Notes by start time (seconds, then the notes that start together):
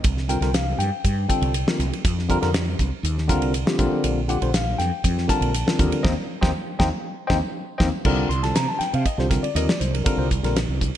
0.04 C2, kick, hi-hat pedal, ride
0.17 snare
0.28 D3 G3 C4 F4 A#4 G5, hi-hat pedal, ride
0.41 C2 D3 G3 C4 F4 A#4, snare, ride
0.53 F4 A4 F5, snare, hi-hat pedal, ride
0.78 G2 G5, hi-hat pedal, ride
1.04 G2, kick, hi-hat pedal, ride
1.28 D3 G3 C4 F4 A4 G5, kick, hi-hat pedal, ride
1.41 C2, ride
1.54 hi-hat pedal, ride
1.66 D3 G3 C4 F4 A#4, snare
1.79 C2, hi-hat pedal, ride
1.91 F4 A#4, ride
2.04 F2, kick, hi-hat pedal, ride
2.19 snare
2.28 D3 G3 C4 F4 A#4, kick, hi-hat pedal, ride
2.41 F2 D3 G3 C4 F4 A#4, snare, ride
2.53 F4, snare, hi-hat pedal, ride
2.79 C2, kick, hi-hat pedal, ride
2.93 muted fretless electric bass stroke
3.03 D#2, hi-hat pedal, ride
3.18 snare
3.28 D3 G3 C4 F4 A#4, kick, snare, hi-hat pedal, ride
3.41 C2, ride
3.54 hi-hat pedal, ride
3.66 D3 G3 C4 F4 G4, snare
3.78 A#1 D3 G3 C4 F4 A#4, kick, hi-hat pedal, ride
4.04 A#1, hi-hat pedal, ride
4.28 D3 G3 C4 F4 G4 F#5, hi-hat pedal, ride
4.41 A#1 D3 G3 C4 F4 C5, ride
4.54 F4 A#4 F5, snare, hi-hat pedal, ride
4.78 F2 G5, snare, hi-hat pedal, ride
5.04 F2, kick, hi-hat pedal, ride
5.18 snare
5.27 D3 G3 C4 F4 A#4 A5, kick, snare, hi-hat pedal, ride
5.41 A#1, ride
5.54 hi-hat pedal, ride
5.66 D3 G3 C4 F4 A#4, snare
5.78 D#2 D3 G3 C4 F4 A#4, kick, hi-hat pedal, ride
5.92 ride
6.03 D#2 A#3 C4 D#4 C5 D#5 G5, kick, snare
6.41 D#2 A#3 C4 D#4 C5 D#5 G5, kick, snare
6.79 D#2 A#3 C4 D#4 C5 D#5 G5, kick, snare
7.27 D#2 A#3 C4 D#4 C5 D#5 G5, kick, snare
7.78 D#2 A#3 C4 D#4 C5 D#5 G5, kick, snare
8.04 C2 D3 G3 C4 F4 A#4, kick, crash
8.29 C2 C6, hi-hat pedal, ride
8.43 D3 G3 C4 F4 A4 A5, snare, ride
8.54 C3 A#5, snare, hi-hat pedal, ride
8.67 F4 A#4 A5
8.79 G5, muted fretless electric bass stroke, snare, hi-hat pedal, ride
8.93 C3 F5, ride
9.05 D#5, kick, hi-hat pedal, ride
9.18 C2 D3 G3 C4 F4 G4 C5, snare
9.30 D3 G3 C4 F4 A#4, kick, snare, hi-hat pedal, ride
9.43 D5, ride
9.55 D#2 D3 G3 C4 F4 A#4 D#5, hi-hat pedal, ride
9.69 D5, snare
9.80 C2 F4 A#4 C5, hi-hat pedal, ride
9.94 A#4, ride
10.04 D3 G3 C4 F4 A4 A#4, kick, hi-hat pedal, ride
10.17 C2 C5
10.31 kick, hi-hat pedal, ride
10.43 A#1 D3 G3 C4 F4 A#4, snare, ride
10.56 snare, hi-hat pedal, ride
10.68 C2 F4 A#4
10.81 kick, hi-hat pedal, ride